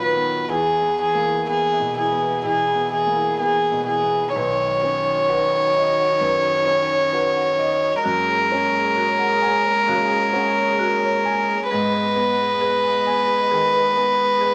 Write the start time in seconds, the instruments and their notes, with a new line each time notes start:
Already playing: grand piano A#2 F#3 B3, string section D#4 F#4 B4
0.02 cello D#3, marimba B4, violin B4
0.16 grand piano B3
0.26 marimba B5
0.49 grand piano E2, cello E3, marimba E4, string section E4 G#4, violin G#4
0.74 marimba E5
0.82 grand piano B3
0.99 cello E3, marimba G#4, violin G#4
1.14 grand piano A#3
1.23 marimba E4
1.47 cello E3, grand piano B3, violin G#4, marimba B4
1.73 marimba E5
1.80 grand piano B2
1.94 cello E3, marimba E4, violin G#4
2.12 grand piano B3
2.22 marimba B4
2.42 grand piano B2, cello E3, marimba E4, violin G#4
2.75 grand piano B3
2.90 cello E3, violin G#4, marimba E5
3.07 grand piano A#3
3.16 marimba E4
3.38 cello E3, grand piano B3, violin G#4, marimba G#4
3.72 grand piano B2
3.86 cello E3, marimba E4, violin G#4
4.03 grand piano B3
4.12 marimba E5
4.35 grand piano B1, cello D#3, string section D#4 F#4 C#5, marimba B4, violin C#5
4.59 marimba D#5
4.83 grand piano C#4
5.28 grand piano F#4, marimba B4
5.52 marimba B5
5.75 grand piano D#5, marimba B5
5.98 marimba F#5
6.20 grand piano F#2, marimba B4
6.44 marimba D#5
6.66 grand piano C#4, marimba B5
7.12 grand piano F#4, marimba B4
7.36 marimba F#5
7.59 marimba D#5, grand piano D#5
8.04 grand piano F#2, cello G#3, string section A#3 G#4 C#5, marimba F#4, violin A#4
8.28 marimba A#4
8.52 grand piano C#4
8.96 marimba F#4, grand piano A#4
9.19 marimba F#5
9.42 marimba F#5, grand piano G#5
9.65 marimba C#5
9.88 grand piano C#3, marimba F#4
10.10 marimba A#4
10.32 grand piano C#4, marimba F#5
10.79 marimba F#4, grand piano A#4
11.03 marimba C#5
11.25 marimba A#4, grand piano G#5
11.47 marimba A#4
11.68 grand piano G#2, cello G#3, string section B3 G#4 D#5, marimba G#4, violin B4
11.93 marimba B4
12.16 grand piano B3
12.61 marimba G#4, grand piano B4
12.83 marimba G#5
13.06 marimba G#5, grand piano G#5
13.29 marimba D#5
13.51 grand piano D#3, marimba G#4
13.74 marimba B4
13.96 grand piano B3, marimba G#5
14.41 marimba G#4, grand piano B4